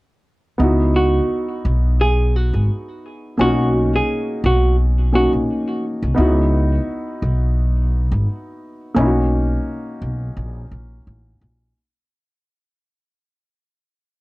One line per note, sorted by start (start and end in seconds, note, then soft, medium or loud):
0.58 1.19 C#2 loud
0.58 3.34 B3 medium
0.58 3.35 D#4 medium
0.58 3.36 E4 medium
0.63 3.36 F#4 medium
0.96 1.96 F#4 medium
1.65 2.49 B1 loud
2.01 2.36 G#4 medium
2.36 3.35 F#4 medium
2.53 2.66 G#1 medium
3.38 3.98 B1 medium
3.38 5.09 A#3 medium
3.38 5.10 C#4 medium
3.38 5.11 D#4 medium
3.38 3.90 F#4 loud
3.43 3.48 F4 medium
3.50 5.13 F#4 medium
3.95 4.41 G#4 medium
4.44 5.28 B1 loud
4.44 4.76 F#4 medium
5.13 6.17 A#3 soft
5.13 6.18 C#4 soft
5.13 6.14 D#4 soft
5.13 6.18 F#4 medium
5.13 5.31 F#4 medium
5.33 5.46 A#1 medium
6.02 6.15 C2 medium
6.14 6.77 C#2 loud
6.14 8.91 B3 medium
6.14 8.92 D#4 medium
6.14 8.93 E4 medium
6.20 8.94 F#4 medium
7.22 8.07 B1 medium
8.11 8.24 G#1 medium
8.95 9.56 B1 loud
8.95 11.71 A#3 medium
8.95 11.71 C#4 medium
8.95 11.72 D#4 medium
9.00 9.05 E4 medium
9.06 11.76 F#4 medium
10.01 10.31 B1 medium
10.37 10.66 A#1 medium
10.72 11.01 A#1 medium
11.07 11.36 A1 medium
11.41 11.71 A#1 medium